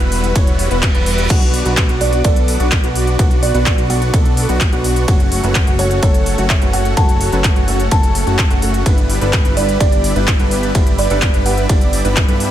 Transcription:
Already playing: B4 F#5 E6
0.00 E1 G3 B3 E4 F#4 B4, closed hi-hat
0.12 open hi-hat
0.24 closed hi-hat
0.36 E1 G3 B3 E4 F#4 C#5, kick, closed hi-hat, ride, reverse cymbal
0.47 closed hi-hat
0.59 open hi-hat
0.71 E1 G3 B3 E4 F#4 B4, closed hi-hat
0.83 kick, clap, closed hi-hat, ride
0.95 E1 G3 B3 E4 F#4 B4, closed hi-hat
1.06 open hi-hat
1.18 closed hi-hat
1.29 B1 B2 F#3 B3 D4 F#4 D5 F#5 D6, kick, closed hi-hat, crash, ride
1.42 closed hi-hat
1.54 open hi-hat
1.65 B1 B2 F#3 B3 D4 F#4 B4, closed hi-hat
1.77 kick, clap, closed hi-hat, ride
1.89 B1 B3 D4 F#4, closed hi-hat
2.00 B2 F#3 B3 D4 A4 D5, open hi-hat
2.13 closed hi-hat
2.24 B1 B2 F#3 B3 D4 A4 D5, kick, closed hi-hat, ride
2.36 closed hi-hat
2.48 open hi-hat
2.59 B1 B2 F#3 B3 D4 F#4, closed hi-hat
2.72 kick, clap, closed hi-hat, ride
2.83 B1 B2 F#3 B3 D4 F#4 B4, closed hi-hat
2.95 open hi-hat
3.07 closed hi-hat
3.18 B1 B2 F#3 B3 D4 F#4 C#6, kick, closed hi-hat, ride
3.31 closed hi-hat
3.43 D5, open hi-hat
3.54 B1 B2 F#3 B3 D4 F#4 B4 D5, closed hi-hat
3.66 kick, clap, closed hi-hat, ride
3.78 B1 B3 D4 F#4, closed hi-hat
3.89 B2 F#3 B3 D4 A4 F#5, open hi-hat
4.02 closed hi-hat
4.13 B1 B2 F#3 B3 D4 A4, kick, closed hi-hat, ride
4.25 closed hi-hat
4.37 open hi-hat
4.48 B1 B2 F#3 B3 D4 F#4, closed hi-hat
4.61 kick, clap, closed hi-hat, ride
4.72 B1 B2 F#3 B3 D4 F#4 B4, closed hi-hat
4.84 open hi-hat
4.96 closed hi-hat
5.08 F#1 F#3 A3 C#4 F#4 A4 C#5, kick, closed hi-hat, ride
5.20 closed hi-hat
5.32 open hi-hat
5.43 F#1 F#3 A3 C#4 F#4 B4, closed hi-hat
5.55 kick, clap, closed hi-hat, ride
5.67 F#1 A3 C#4 F#4, closed hi-hat
5.79 F#3 A3 C#4 A4 C#5, open hi-hat
5.91 closed hi-hat
6.02 F#1 F#3 A3 C#4 A4 C#5, kick, closed hi-hat, ride
6.14 closed hi-hat
6.26 open hi-hat
6.37 F#1 F#3 A3 C#4 F#4, closed hi-hat
6.50 E5, kick, clap, closed hi-hat, ride
6.61 F#1 F#3 A3 C#4 F#4 B4, closed hi-hat
6.73 F#5, open hi-hat
6.85 closed hi-hat
6.97 F#1 F#3 A3 C#4 F#4 A5, kick, closed hi-hat, ride
7.09 closed hi-hat
7.21 open hi-hat
7.32 F#1 F#3 A3 C#4 F#4 B4, closed hi-hat
7.44 kick, clap, closed hi-hat, ride
7.56 F#1 A3 C#4 F#4, closed hi-hat
7.67 F#3 A3 C#4 A4, open hi-hat
7.80 closed hi-hat
7.91 F#1 F#3 A3 C#4 A4 A5, kick, closed hi-hat, ride
8.03 closed hi-hat
8.15 open hi-hat
8.27 F#1 A3 C#4 F#4, closed hi-hat
8.39 kick, clap, closed hi-hat, ride
8.50 F#1 F#3 A3 C#4 F#4, closed hi-hat
8.62 F#3 A3 C#4 A4, open hi-hat
8.74 closed hi-hat
8.85 G1 G2 G3 B3 D4 E4 G4 B4 D5 E5 B5, kick, closed hi-hat, ride
8.98 closed hi-hat
9.10 open hi-hat
9.21 G1 G2 G3 B3 D4 E4 A4 B4, closed hi-hat
9.33 kick, clap, closed hi-hat, ride
9.45 G1 G3 B3 D4 E4 B4, closed hi-hat
9.56 G2 G3 B3 D4 G4 D5, open hi-hat
9.69 closed hi-hat
9.80 G1 G2 G3 B3 D4 E4 G4 D5, kick, closed hi-hat, ride
9.92 closed hi-hat
10.04 open hi-hat
10.15 G1 G2 G3 B3 D4 E4 B4, closed hi-hat
10.28 kick, clap, closed hi-hat, ride
10.39 G1 G2 G3 B3 D4 E4 A4 B4, closed hi-hat
10.51 open hi-hat
10.63 closed hi-hat
10.74 G1 G2 G3 B3 D4 E4 B4, kick, closed hi-hat, ride
10.87 closed hi-hat
10.98 D5, open hi-hat
11.10 G1 G2 G3 B3 D4 E4 A4 B4 D5, closed hi-hat
11.22 kick, clap, closed hi-hat, ride
11.34 G1 G3 B3 D4 E4 B4, closed hi-hat
11.45 G2 G3 B3 D4 G4 F#5, open hi-hat
11.58 closed hi-hat
11.69 G1 G2 G3 B3 D4 E4 G4 D5, kick, closed hi-hat, ride
11.81 closed hi-hat
11.93 open hi-hat
12.04 G1 G2 G3 B3 D4 E4 B4, closed hi-hat
12.17 kick, clap, closed hi-hat, ride
12.28 G2 G3 B3 D4 E4 A4 B4, closed hi-hat
12.40 open hi-hat

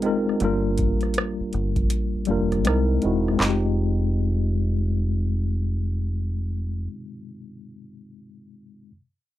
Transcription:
Already playing: G#3 C4 D#4 F4 A#4
0.02 G#3 C4 D#4 F4, closed hi-hat
0.06 A#4
0.29 cross-stick
0.40 G1 G3 A#3 D4 F4, closed hi-hat
0.45 A#4
0.78 kick, closed hi-hat
1.01 cross-stick, closed hi-hat
1.14 closed hi-hat
1.18 cross-stick
1.40 muted fingered electric bass stroke
1.53 G1, closed hi-hat
1.76 kick, closed hi-hat
1.90 closed hi-hat
2.15 muted fingered electric bass stroke
2.25 F1 G3 A#3 D4, closed hi-hat
2.30 F4 A#4
2.52 cross-stick, closed hi-hat
2.64 C2 G#3 C4 D#4 E4, cross-stick, closed hi-hat
2.69 A#4
3.02 E1 G#3 C4 D#4 E4, closed hi-hat
3.06 F#4
3.28 cross-stick
3.33 G#3
3.37 C4, clap, floor tom
3.41 F1 D#4, snare
3.45 F4 G4

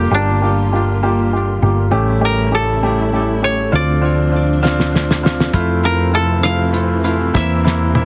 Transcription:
Already playing: D3 G3 A#3 F4 G4 A4
0.11 G1 A#3 D4 F4 G4
0.42 A#3 F4 G4
0.72 A#3 F4 G4
1.03 A#3 F4 G4
1.32 F4 G4
1.62 G1 A#3 F4 G4
1.91 A1 C#3 G3 A3 C#4 E4 G4
2.20 A3 C#4 G4
2.25 A#4
2.51 A3 C#4 G4 A4
2.83 A3 C#4 G4
3.13 A3 C#4 G4
3.42 A3 C#4 G4 C#5
3.72 D2 C3 F3 C4 D4 F4 D5
4.01 C4 D4 F4
4.31 C4 D4 F4
4.63 C4 D4 F4, snare
4.80 snare
4.93 C4 D4 F4, snare
5.11 snare
5.23 C4 D4 F4, snare
5.40 snare
5.53 F2 E3 A3 C4 E4 F4, kick, closed hi-hat
5.83 A3 E4 F4 A#4, closed hi-hat
6.12 A3 E4 F4 A4, closed hi-hat
6.43 A3 E4 F4 F5, cross-stick, closed hi-hat
6.73 A3 E4 F4, closed hi-hat
7.04 A3 E4 F4, closed hi-hat
7.34 E2 G3 A#3 C4 E4 E5, kick, snare
7.64 A#3 C4 E4, snare
7.95 A#3 C4 E4, high tom

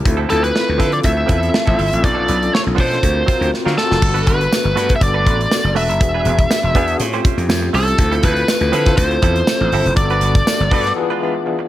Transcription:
0.04 D2 C4 E4 F4 A4, muted clean electric guitar stroke, kick, closed hi-hat
0.17 F3 C4 E4 A4
0.30 D2 F3 C4 E4 F4 A4 B4, closed hi-hat
0.43 B4, muted clean electric guitar stroke, closed hi-hat
0.55 muted clean electric guitar stroke, snare
0.68 D2, muted clean electric guitar stroke
0.78 D3 F3 C4 E4 F4 A4, kick, snare, closed hi-hat
0.92 D5, muted clean electric guitar stroke, closed hi-hat
1.03 D2 E5, muted clean electric guitar stroke, kick, closed hi-hat
1.17 muted clean electric guitar stroke
1.26 E2 F3 C4 E4 F4 A4 B4, kick, closed hi-hat
1.40 F3 C4 E4 A4, closed hi-hat
1.53 muted clean electric guitar stroke, snare
1.66 A1 F3 C4 E4 F4 A4, kick, closed hi-hat
1.77 G1 F3 C4 E4 A4, open hi-hat
1.90 A1, muted clean electric guitar stroke, closed hi-hat
2.02 B1 C#4 D4 F4 A4 D5, muted clean electric guitar stroke, kick, closed hi-hat
2.15 F3 B3 D4 A4
2.27 B1 F3 B3 C#4 D4 F4 A4 B4, closed hi-hat
2.43 closed hi-hat
2.51 C#5, muted clean electric guitar stroke, snare
2.64 B1, muted clean electric guitar stroke
2.75 B2 F3 B3 C#4 D4 F4 A4, kick, open hi-hat
2.79 A4 C5
2.90 muted clean electric guitar stroke, snare, closed hi-hat
3.01 D2 C4 F4 F#4 A#4, muted clean electric guitar stroke, kick, closed hi-hat
3.15 muted clean electric guitar stroke
3.26 F#3 C4 F4 F#4 A#4 C5, kick, closed hi-hat
3.39 D2 F#3 C4 F4 A#4, closed hi-hat
3.52 muted clean electric guitar stroke, snare
3.65 D3 F#3 C4 F4 F#4 A#4, snare
3.78 A4, snare
3.91 F1, muted clean electric guitar stroke, snare
4.02 G1 D4 F#4, muted clean electric guitar stroke, kick, crash
4.14 A3 D4 F#4 B4, closed hi-hat
4.26 G1 A3 D4 F#4 B4, kick, closed hi-hat
4.40 muted clean electric guitar stroke, closed hi-hat
4.51 muted clean electric guitar stroke, snare, tambourine
4.64 G1, muted clean electric guitar stroke
4.75 G2 A3 B3 D4 F#4 A4 B4, snare, closed hi-hat
4.89 B3 D4 F#4 A4, muted clean electric guitar stroke, kick, closed hi-hat
4.96 E5
5.00 G1 D5, muted clean electric guitar stroke, kick, closed hi-hat
5.14 A3 D4 F#4 B4
5.26 A1 A3 D4 F#4 B4, kick, closed hi-hat
5.40 muted clean electric guitar stroke, closed hi-hat
5.51 muted clean electric guitar stroke, snare, tambourine
5.64 F#1, muted clean electric guitar stroke
5.75 E1 A3 D4 F#4 B4 E5, open hi-hat
5.89 F#1, muted clean electric guitar stroke, closed hi-hat
6.00 E1 B3 D4 F#4 G#4, muted clean electric guitar stroke, kick, closed hi-hat
6.14 B3 D4 G#4 B4
6.25 E1 B3 D4 G#4 B4, closed hi-hat
6.38 muted clean electric guitar stroke, kick, closed hi-hat
6.51 muted clean electric guitar stroke, snare, tambourine
6.63 E1, muted clean electric guitar stroke
6.75 E2 B3 D4 F#4 G#4 B4, kick, closed hi-hat
6.88 B3 D4 F#4 G#4, muted clean electric guitar stroke, closed hi-hat
6.99 A2 C4 C#4 F4 G4, muted clean electric guitar stroke, closed hi-hat
7.13 A3 C#4 G4 C5, closed hi-hat
7.24 A3 C#4 G4 C5, kick, closed hi-hat
7.38 F2, muted clean electric guitar stroke, closed hi-hat
7.49 F2, muted clean electric guitar stroke, snare, tambourine
7.62 muted clean electric guitar stroke
7.73 C2 A3 C#4 G4 A4 C5, open hi-hat
7.87 muted clean electric guitar stroke, closed hi-hat
7.98 D2 C4 E4 F4 A4, muted clean electric guitar stroke, kick, closed hi-hat
8.12 F3 C4 E4 A4, closed hi-hat
8.22 D2 F3 C4 E4 A4 B4, kick, closed hi-hat
8.35 muted clean electric guitar stroke, closed hi-hat
8.47 muted clean electric guitar stroke, snare, tambourine
8.61 D2, muted clean electric guitar stroke, closed hi-hat
8.72 D3 F3 C4 E4 F4 A4, closed hi-hat
8.86 C4 E4 F4 A4, muted clean electric guitar stroke, kick, snare, closed hi-hat
8.97 D2 C5, kick, closed hi-hat
9.11 muted clean electric guitar stroke, closed hi-hat
9.22 E2 F3 C4 E4 A4, kick, closed hi-hat
9.36 muted clean electric guitar stroke, closed hi-hat
9.47 muted clean electric guitar stroke, snare, tambourine
9.61 A1, muted clean electric guitar stroke
9.72 G1 F3 C4 E4 A4, open hi-hat
9.86 F1, muted clean electric guitar stroke, closed hi-hat
9.96 G1 B3 D4 F#4 A4 D5, muted clean electric guitar stroke, kick, closed hi-hat
10.10 B3 D4 F#4 B4, closed hi-hat
10.21 G1 B3 D4 F#4 B4, closed hi-hat
10.35 muted clean electric guitar stroke, kick, closed hi-hat
10.47 muted clean electric guitar stroke, snare, tambourine
10.60 G1, muted clean electric guitar stroke
10.70 G2 B3 D4 F#4 A4 B4, kick, open hi-hat
10.84 B3 D4 F#4 A4, muted clean electric guitar stroke, snare, closed hi-hat
10.96 E3 B3 D4 F4 G#4, muted clean electric guitar stroke
11.10 G#3 D4 F4 B4
11.21 G#3 D4 F4 B4 D5 E5
11.35 muted clean electric guitar stroke
11.45 G#4 D5 F5, muted clean electric guitar stroke
11.59 muted clean electric guitar stroke

